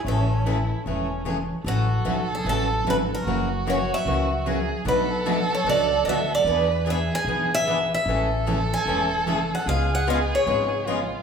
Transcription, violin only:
X:1
M:4/4
L:1/8
Q:"Swing" 1/4=150
K:A
V:1 name="Violin"
C2 E2 C3 z | A8 | F6 G2 | A8 |
B2 G4- G z | A8 | G6 ^E2 |]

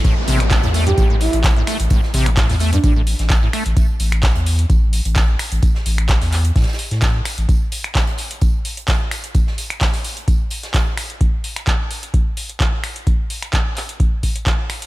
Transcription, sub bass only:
X:1
M:4/4
L:1/16
Q:"Swing 16ths" 1/4=129
K:Am
V:1 name="Sub bass" clef=bass
z2 A,,,3 E,,3 A,,,3 A,,,3 z A,,, | z2 A,,,3 E,,3 A,,,3 A,,,3 z A,,, | z2 A,,,3 E,,3 A,,,3 A,,,3 z A,,, | z2 A,,,3 E,,3 A,, z2 A,,3 z A,,, |
z16 | z16 | z16 | z16 |]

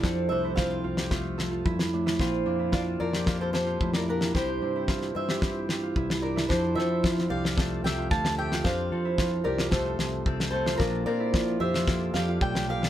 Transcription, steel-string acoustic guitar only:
X:1
M:4/4
L:1/16
Q:1/4=112
K:F
V:1 name="Steel-string acoustic guitar"
[df]2 [ce]2 [cf]8 z4 | z4 [df]2 [Bd]3 [Ac] [Ac]3 [Bd] [GB]2 | [Gc]6 [ce]8 [Bd]2 | [Ac]2 [ce]4 [df]4 [eg]2 [fa]2 [eg]2 |
[cf]6 [Bd]2 [Ac]4 z2 [Ac]2 | [FB]2 [Bd]4 [ce]4 [df]2 [dg]2 [df]2 |]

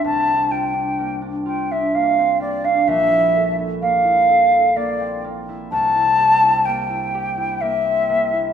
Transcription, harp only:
X:1
M:3/4
L:1/16
Q:1/4=63
K:Cmix
V:1 name="Harp"
[C,,CDF] D F D B, D F D B, C B, D | B,,, E A E B, E A E B, C B, E | C,, E G E B, E G E B, C B, E |]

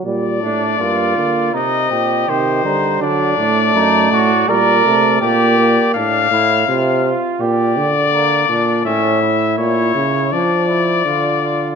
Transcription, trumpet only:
X:1
M:4/4
L:1/8
Q:1/4=82
K:Gm
V:1 name="Trumpet"
d4 e2 c2 | d4 d2 d2 | f3 z d4 | =e2 ^c2 d4 |]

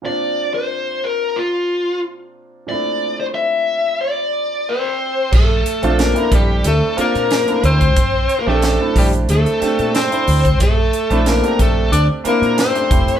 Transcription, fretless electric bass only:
X:1
M:4/4
L:1/16
Q:1/4=91
K:Bblyd
V:1 name="Fretless electric bass" clef=bass
z16 | z16 | B,,,2 z B,,,2 z B,,,2 D,, z2 B,,2 z D,,2 | B,,,2 z B,,,2 z B,,,2 D,, z2 B,,2 z D,,2 |
B,,,2 z B,,,2 z B,,,2 D,, z2 B,,2 z F,,, z |]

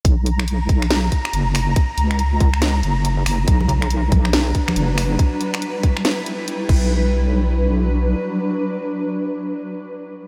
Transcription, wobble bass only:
X:1
M:4/4
L:1/8
Q:"Swing 16ths" 1/4=140
K:Bm
V:1 name="Wobble bass" clef=bass
B,,,3 B,,,2 z F,,,2 | z C,,4 F,,,2 F,,, | B,,,3 B,,,2 z F,,,2 | z6 z B,,,- |
B,,,6 z2 | z8 |]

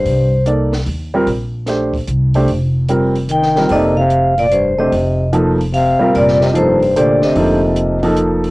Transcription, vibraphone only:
X:1
M:3/4
L:1/8
Q:"Swing" 1/4=148
K:Fmix
V:1 name="Vibraphone"
c2 z4 | z6 | z4 g2 | e f2 d c e- |
e2 z2 f2 | d e c2 d e- | e4 z2 |]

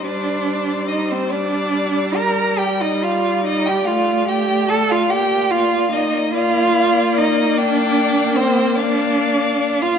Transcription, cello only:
X:1
M:12/8
L:1/16
Q:3/8=48
K:Gm
V:1 name="Cello"
D4 E C D4 B2 G E F2 E G F2 G2 A F | G2 F2 E2 F4 E2 D4 C2 D4- D F |]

